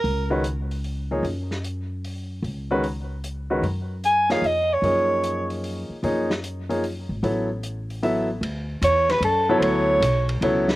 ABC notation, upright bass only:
X:1
M:3/4
L:1/8
Q:"Swing" 1/4=150
K:F#
V:1 name="Upright bass" clef=bass
C,,6 | F,,6 | C,,6 | F,,4 E,,2 |
F,,4- F,, z | F,,4- F,, G,,, | =A,,,6 | [K:D] D,,2 E,,2 F,,2 |
D,,2 B,,,2 C,,2 |]